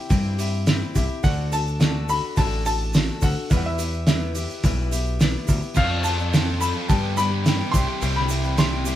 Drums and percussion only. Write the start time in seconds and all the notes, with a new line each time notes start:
0.10 kick, open hi-hat, shaker
0.39 open hi-hat, shaker
0.67 snare, open hi-hat, shaker
0.95 kick, open hi-hat, shaker
1.24 kick, open hi-hat, shaker
1.52 open hi-hat, shaker
1.67 shaker
1.81 snare, open hi-hat, shaker
2.09 open hi-hat, shaker
2.37 kick, open hi-hat, shaker
2.66 open hi-hat, shaker
2.93 snare, open hi-hat, shaker
3.21 kick, open hi-hat, shaker
3.50 kick, open hi-hat, shaker
3.79 open hi-hat, shaker
3.93 shaker
4.07 snare, open hi-hat, shaker
4.35 open hi-hat, shaker
4.50 shaker
4.64 kick, open hi-hat, shaker
4.92 open hi-hat, shaker
5.06 shaker
5.20 snare, open hi-hat, shaker
5.48 kick, open hi-hat, shaker
5.62 shaker
5.75 kick, crash, shaker
6.04 open hi-hat, shaker
6.19 shaker
6.34 snare, open hi-hat, shaker
6.61 open hi-hat, shaker
6.89 kick, open hi-hat, shaker
7.17 open hi-hat, shaker
7.46 snare, open hi-hat, shaker
7.74 kick, open hi-hat, shaker
8.02 open hi-hat, shaker
8.17 snare
8.29 open hi-hat, shaker
8.44 shaker
8.58 snare, open hi-hat, shaker
8.85 open hi-hat, shaker